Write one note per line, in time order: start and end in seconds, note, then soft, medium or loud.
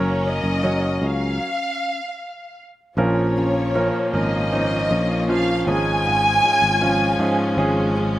0.00 0.40 F#1 medium
0.00 0.60 F#3 medium
0.00 1.37 F#3 medium
0.00 1.49 F#3 medium
0.00 1.37 A#3 medium
0.00 0.60 C#4 medium
0.00 1.39 C#4 medium
0.00 0.60 A#4 medium
0.00 0.26 C#5 medium
0.25 0.64 C#4 soft
0.25 1.03 D#5 medium
0.44 0.98 F#1 medium
0.63 1.37 F#3 soft
0.63 1.37 C#4 soft
0.63 2.00 C#4 soft
0.63 1.49 F#4 soft
0.63 1.50 A#4 soft
0.63 1.37 C#5 medium
1.02 1.38 C#2 medium
1.02 2.59 F5 medium
2.97 3.90 A#1 medium
2.97 5.67 A#2 medium
2.97 4.10 A#2 soft
2.97 3.71 F3 medium
2.97 5.65 F3 medium
2.97 5.65 A#3 medium
2.97 8.19 C#4 medium
2.97 3.71 C#4 medium
2.97 3.71 A#4 medium
2.97 4.11 C#5 medium
3.37 3.75 C#4 soft
3.37 4.91 F4 soft
3.37 4.91 A#4 medium
3.75 4.12 F3 medium
3.75 4.90 C#4 soft
3.75 4.12 C#4 medium
3.75 4.12 A#4 medium
4.13 4.87 G#1 medium
4.13 4.50 F3 soft
4.13 4.50 C#4 soft
4.13 4.51 A#4 medium
4.13 5.26 D#5 medium
4.52 5.25 F3 soft
4.52 5.75 A#3 medium
4.52 5.25 C#4 soft
4.52 5.26 D#4 medium
4.91 5.63 A#1 medium
4.91 6.43 C#4 soft
4.91 6.43 F4 soft
4.91 5.76 A#4 medium
5.29 5.66 F3 medium
5.29 5.66 C#4 medium
5.29 5.68 F4 medium
5.29 5.65 F5 medium
5.67 6.39 G#1 medium
5.67 6.04 G#2 medium
5.67 6.78 G#2 medium
5.67 8.19 F3 medium
5.67 6.76 F3 medium
5.67 8.19 G#3 medium
5.67 6.76 C#4 medium
5.67 6.76 G#4 medium
5.67 7.92 G#5 loud
6.05 8.19 G#2 medium
6.43 6.81 C#4 soft
6.43 7.95 F4 medium
6.43 7.96 G#4 medium
6.62 7.15 G#1 medium
6.81 7.18 F3 medium
6.81 7.95 C#4 medium
6.81 7.18 C#4 medium
6.81 7.18 F4 medium
7.19 7.55 G#2 medium
7.19 7.55 F3 medium
7.19 7.56 C#4 medium
7.19 7.56 G#4 medium
7.57 8.19 G#1 medium
7.57 8.19 F3 medium
7.57 8.19 G#3 medium
7.57 8.19 C#4 medium
7.57 8.19 G#4 medium
7.95 8.19 C#4 soft
7.95 8.19 F4 soft
7.95 8.19 G#4 medium